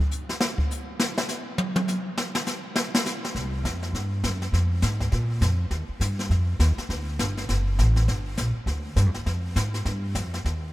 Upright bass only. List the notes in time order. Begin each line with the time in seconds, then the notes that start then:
3.35 C2
3.63 F2
3.93 G2
4.24 F#2
4.53 F2
4.82 G#2
5.12 A#2
5.41 F2
5.71 D#2
5.89 muted upright bass stroke
6.00 G2
6.30 F2
6.59 D#2
6.77 muted upright bass stroke
6.89 D2
7.19 G1
7.49 F#1
7.78 A1
8.08 G1
8.38 A#1
8.55 muted upright bass stroke
8.66 D2
8.96 G2
9.06 F2
9.16 D2
9.26 F2
9.56 G#2
9.85 G2
10.15 F2
10.45 D#2